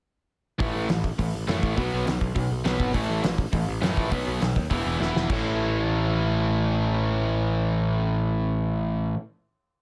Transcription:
0.59 A1 A2 E3 A3, kick, open hi-hat
0.74 A1
0.88 A1 A2 E3, snare, open hi-hat
1.04 kick
1.19 A1 A2 E3, kick, open hi-hat
1.34 A1
1.47 F#2 A2 E3 A3, snare, open hi-hat
1.63 A1, kick
1.76 B1 B2 F#3 B3, kick, open hi-hat
1.94 B1
2.06 B1 B2 F#3, snare, open hi-hat
2.21 B1, kick
2.35 B1 B2 F#3, kick, open hi-hat
2.51 B1
2.64 B1 B2 F#3 B3, snare, open hi-hat
2.80 G#1, kick
2.93 A1 A2 E3 A3, kick, open hi-hat
3.10 A1
3.23 A1 A2 E3, snare, open hi-hat
3.38 kick
3.53 A1 A2 E3, kick, open hi-hat
3.67 A1
3.81 F#2 A2 E3 A3, snare, open hi-hat
3.97 A#1, kick
4.11 B1 B2 F#3 B3, kick, open hi-hat
4.27 B1
4.41 B1 B2 F#3, snare, open hi-hat
4.56 D#2, kick
4.70 E1 E2 B2 E3 B3 E4, kick, open hi-hat
4.86 E1
4.99 E1 E2 B2 E3 B3 E4, snare
5.15 E1, snare
5.27 A1 A2 E3 A3 C#4 E4, kick, crash

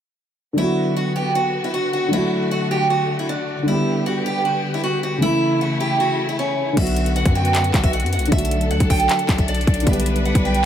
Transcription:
0.53 D3 F#3
0.58 D3 B3 E4 F#4
0.62 F#4
0.96 F#4
1.16 G4
1.35 F#4
1.64 E4
1.74 F#4
1.93 F#4
2.08 D3 F#3
2.13 A3 E4
2.17 F#4
2.51 F#4
2.71 G4
2.90 F#4
3.19 E4
3.29 D4
3.63 D3 G3
3.68 B3 E4 G4
3.72 G4
4.06 F#4
4.26 G4
4.45 F#4
4.74 E4
4.84 F#4
5.03 F#4
5.18 C#3 E3
5.22 C#3 A3 E4
5.27 E4
5.61 F#4
5.80 G4
6.00 F#4
6.29 E4
6.39 C#4
6.73 D3 F#3
6.77 B1 D3 B3 F#4 E5, kick, closed hi-hat, crash
6.82 F#4
6.87 closed hi-hat
6.96 closed hi-hat
7.06 closed hi-hat
7.16 F#5, closed hi-hat
7.26 F#2, kick, closed hi-hat
7.35 G5
7.45 closed hi-hat
7.55 F#5, clap, closed hi-hat
7.64 closed hi-hat
7.74 B1, kick, clap, closed hi-hat
7.84 E5, kick, closed hi-hat
7.93 F#5, closed hi-hat
8.00 F#2, closed hi-hat
8.06 closed hi-hat
8.13 F#5, closed hi-hat
8.17 B1, closed hi-hat
8.26 D3, closed hi-hat
8.30 B1 F#3 A3 D4 A4 E5, kick, closed hi-hat
8.37 F#4, closed hi-hat
8.45 closed hi-hat
8.51 closed hi-hat
8.61 closed hi-hat
8.71 D2 F#5, closed hi-hat
8.80 B1, kick, closed hi-hat
8.90 G5, kick, open hi-hat
9.00 closed hi-hat
9.09 F#5, clap, closed hi-hat
9.19 closed hi-hat
9.29 B1, kick, clap, closed hi-hat
9.38 E5, kick, closed hi-hat
9.48 D5, closed hi-hat
9.55 closed hi-hat
9.61 closed hi-hat
9.67 B1, kick, closed hi-hat
9.74 closed hi-hat
9.80 D3, closed hi-hat
9.85 B1 G3 B3 B4 E5, kick, closed hi-hat
9.91 G4, closed hi-hat
10.00 closed hi-hat
10.06 closed hi-hat
10.16 closed hi-hat
10.25 F#5, closed hi-hat
10.35 B1, kick, closed hi-hat
10.45 G5
10.54 closed hi-hat

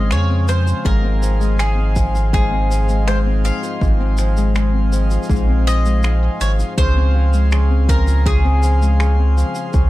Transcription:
Already playing: G#1 F3 G#3 C4 F4 G#4 F5 C6
0.11 F2 C#3 C#5, finger snap, shaker
0.29 C4
0.48 F3 C5, shaker
0.66 F4, shaker
0.85 G#1 G#2 D#4 A#4, kick, shaker
1.03 C4
1.22 F3, shaker
1.40 G#3, shaker
1.59 G#2 G#4, finger snap, shaker
1.77 C4
1.96 F3, kick, shaker
2.15 F4, shaker
2.33 G#2 G#4, kick, shaker
2.51 C4
2.70 F3, shaker
2.89 G#3, shaker
3.07 G#2 C5, finger snap, shaker
3.26 C4
3.44 F3 F5, shaker
3.63 F4, shaker
3.81 G#1 G#2, kick, shaker
4.00 C4
4.18 F3, finger snap, shaker
4.37 G#3, shaker
4.55 G#2, finger snap, shaker
4.74 C4
4.92 F3, shaker
5.11 F4, shaker
5.23 shaker
5.30 A#1 G#2, kick, shaker
5.35 shaker
5.48 C4
5.67 F3 D#5, shaker
5.85 G#3, shaker
6.03 G#2, finger snap, shaker
6.41 G#1 F3 C#5, shaker
6.59 F4, shaker
6.78 C#2 C#3 G#4 C5 F5 C6, kick, shaker
6.96 C4
7.15 F3
7.33 G#3, shaker
7.51 C#3, finger snap, shaker
7.70 C4
7.89 F3 A#4, kick, shaker
8.07 F4, shaker
8.26 C#3 G#4, kick, shaker
8.44 C4
8.63 F3, shaker
8.81 G#3, shaker
9.00 C#3, finger snap, shaker
9.18 C4
9.37 F3, shaker
9.55 F4, shaker
9.73 C#2 C#3, kick, shaker

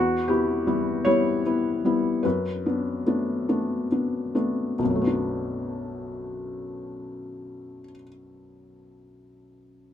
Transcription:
Already playing: E2 F#4
0.28 B3 E4 G4
0.67 G3 B3 E4
1.05 G3 B3 E4 C#5
1.46 B3 E4
1.85 G3 B3 E4
2.23 F#2 B4
2.66 B3 D4
3.06 A3 B3 D4
3.49 A3 B3 D4
3.92 B3 D4
4.35 A3 B3 D4
4.79 B1
4.84 F#2
4.90 F#3
4.95 A3
5.01 B3
5.07 D4

